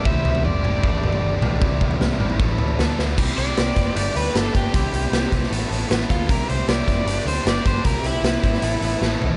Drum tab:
CC |----------------|----------------|x---------------|----------------|
HH |----------------|----------------|--x-x-x-x-x-x-x-|x-x-x-x-x-x-x-x-|
SD |----------------|----o-------o-o-|----o-------o---|----o--o----oo--|
T2 |----o-o-------o-|----o-oo--------|----------------|----------------|
FT |o-oo----o-oo--o-|o-oo----oooo----|----------------|----------------|
BD |o-------o-------|o-o-----o-------|o-----o-------o-|o-----o-------o-|

CC |----------------|----------------|
HH |x-x-x-x-x-x-x-x-|x-x-x-x-x-x-----|
SD |----o-------o---|----o--o----o---|
T2 |----------------|----------------|
FT |----------------|--------------o-|
BD |o-----o-------o-|o-----o---------|